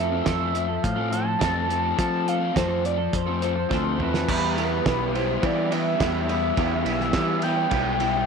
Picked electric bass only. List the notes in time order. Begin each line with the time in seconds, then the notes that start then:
Already playing: F2
0.26 F2
0.84 A2
1.42 F2
1.99 F3
2.56 F2
3.13 F2
3.71 D2
3.98 E2
4.29 E2
4.86 B1
5.43 E3
6.00 E2
6.57 E2
6.85 B1
7.14 E3
7.72 B1